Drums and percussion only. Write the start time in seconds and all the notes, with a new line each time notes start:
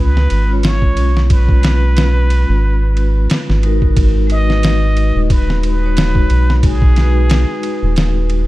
0.17 snare
0.30 ride
0.63 snare, ride
0.82 kick
0.97 ride
1.17 snare
1.30 kick, ride
1.49 kick
1.63 snare, ride
1.97 snare, ride
2.30 ride
2.97 ride
3.30 snare, ride
3.50 snare
3.63 ride
3.82 kick
3.97 kick, ride
4.30 ride
4.50 snare
4.63 snare, ride
4.97 ride
5.30 kick, ride
5.50 snare
5.63 ride
5.97 snare, ride
6.15 kick
6.30 ride
6.50 snare
6.63 kick, ride
6.82 kick
6.96 snare, ride
7.30 snare, ride
7.63 ride
7.96 snare, ride
8.30 ride